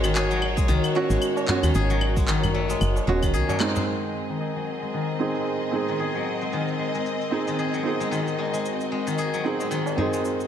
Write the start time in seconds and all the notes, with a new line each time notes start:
Already playing: G#1 C#4 F#4 C#5
0.04 D#3, cabasa, claves
0.15 G#4, clap, cabasa
0.31 F#3, cabasa
0.42 tabla tin, claves
0.57 G#3, kick, cabasa
0.68 C2 D#3, tabla tin, cabasa
0.84 cabasa, claves
0.95 A3 C#4 F#4, tabla tin
1.10 G#1 G#3, tabla na, cabasa
1.22 cabasa, claves
1.37 tabla na, cabasa
1.48 G#3 C#4 F#4, clap, tabla ge
1.63 D#2 D#3, cabasa, claves
1.75 G#1 G#4, tabla tin, cabasa
1.90 F#3, cabasa
2.01 tabla tin, claves
2.17 G#3, kick, cabasa
2.28 D#3, clap, cabasa
2.43 tabla ge, cabasa, claves
2.54 A3, tabla na, tabla tin
2.69 G#3, cabasa
2.81 F#1, cabasa, claves
2.96 tabla na, cabasa
3.07 D#1 G#3 C#4 F#4
3.23 D#3, kick, tabla na, cabasa, claves
3.34 C2 G#4, cabasa
3.49 F#3, tabla na, tabla ge, cabasa
3.60 G#3 C4 D#4, clap, claves
3.76 G#3, tabla ge, cabasa
3.86 C4 G#4 D#5, cabasa
4.03 cabasa
4.14 G#3
4.29 D#3, cabasa
4.40 G#4, cabasa
4.56 F#3, cabasa
4.82 G#3, cabasa
4.93 D#3, cabasa
5.08 cabasa
5.19 G#3 C4 D#4 G#4
5.35 G#3, cabasa
5.46 cabasa
5.62 cabasa
5.71 G#3 C4 D#4 G#4
5.88 D#3, cabasa
5.99 G#4, cabasa
6.15 F#3, cabasa
6.41 G#3, cabasa
6.53 D#3, cabasa
6.68 cabasa
6.79 G#3
6.95 G#3, cabasa
7.06 cabasa
7.21 cabasa
7.31 G#3 C4 D#4 G#4
7.47 D#3, cabasa
7.59 G#4, cabasa
7.74 F#3, cabasa
7.83 C4 D#4
7.87 G#4
8.00 G#3, cabasa
8.11 D#3 F#4, cabasa
8.28 cabasa
8.38 G#3, tabla na, tabla tin
8.53 G#3, cabasa
8.65 cabasa
8.81 cabasa
8.91 G#3, tabla tin
9.07 D#3, cabasa
9.18 G#4, tabla tin, cabasa
9.34 F#3, cabasa
9.44 C4 D#4 G#4, tabla tin
9.60 G#3, tabla na, cabasa
9.71 D#3, cabasa
9.86 tabla na, cabasa
9.96 G#3 C4 D#4, tabla ge
10.00 G#4
10.13 G#3, cabasa
10.25 tabla tin, cabasa
10.40 cabasa